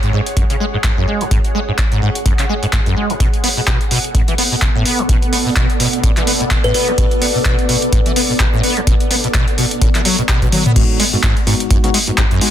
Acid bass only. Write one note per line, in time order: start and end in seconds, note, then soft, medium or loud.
0.03 0.11 G#2 loud
0.13 0.20 G#2 loud
0.37 0.44 F#2 medium
0.50 0.56 C#3 medium
0.60 0.65 G#3 loud
0.74 0.77 G#2 medium
0.84 0.91 G#2 medium
0.97 1.06 F#2 loud
1.08 1.22 G#3 medium
1.21 1.24 B2 loud
1.31 1.39 G#2 medium
1.55 1.59 G#3 loud
1.68 1.72 G#2 medium
1.92 2.00 G#2 loud
2.02 2.09 G#2 loud
2.26 2.33 F#2 medium
2.39 2.45 C#3 medium
2.49 2.54 G#3 loud
2.63 2.66 G#2 medium
2.73 2.80 G#2 medium
2.86 2.95 F#2 loud
2.96 3.11 G#3 medium
3.10 3.13 B2 loud
3.20 3.27 B2 medium
3.44 3.48 B3 loud
3.57 3.61 B2 medium
3.67 3.78 B2 loud
3.91 3.98 B2 loud
4.15 4.22 A2 medium
4.28 4.34 E3 medium
4.38 4.43 B3 loud
4.52 4.55 B2 medium
4.62 4.69 B2 medium
4.75 4.84 A2 loud
4.86 5.00 B3 medium
4.99 5.02 D3 loud
5.09 5.16 B2 medium
5.33 5.37 B3 loud
5.46 5.50 B2 medium
5.56 5.67 B2 medium
5.80 5.87 B2 loud
6.04 6.11 A2 medium
6.17 6.23 E3 medium
6.27 6.32 B3 loud
6.41 6.44 B2 medium
6.51 6.58 B2 medium
6.64 6.73 A2 loud
6.74 6.89 B3 medium
6.88 6.91 D3 loud
6.98 7.05 B2 medium
7.22 7.26 B3 loud
7.35 7.38 B2 medium
7.45 7.56 B2 loud
7.69 7.76 B2 loud
7.93 8.00 A2 medium
8.06 8.12 E3 medium
8.16 8.21 B3 loud
8.30 8.33 B2 medium
8.40 8.47 B2 medium
8.53 8.62 A2 loud
8.63 8.78 B3 medium
8.77 8.80 D3 loud
8.87 8.94 B2 medium
9.11 9.15 B3 loud
9.24 9.27 B2 medium
9.34 9.45 B2 loud
9.58 9.65 B2 loud
9.82 9.89 A2 medium
9.95 10.01 E3 medium
10.05 10.16 F#3 loud
10.19 10.22 B2 loud
10.29 10.40 B2 loud
10.42 10.48 B2 loud
10.52 10.63 F#3 loud
10.66 10.71 B3 medium
10.76 10.83 G#2 medium
11.00 11.04 G#3 loud
11.13 11.16 G#2 medium
11.23 11.34 G#2 loud
11.47 11.54 G#2 loud
11.71 11.78 F#2 medium
11.84 11.90 C#3 medium
11.94 11.99 G#3 loud
12.08 12.11 G#2 medium
12.18 12.25 G#2 medium
12.31 12.40 F#2 loud
12.41 12.51 G#3 medium